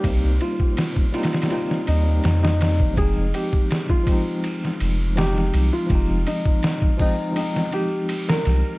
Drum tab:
RD |x---x---x---xxxxx---x---x---x---|x---x---x---x---x---x---x---x---|x---x---x-------x---x---x---x---|
HH |--------------------------------|--------------------------------|------------o-------------------|
SD |--------o----ooo--o-----o-o-o---|--------o---------o-----o-o-----|--------o---------o-------o-o---|
BD |o-----o---o-------------------o-|o-----o---o-o-------------------|o-----o---o-o-------------------|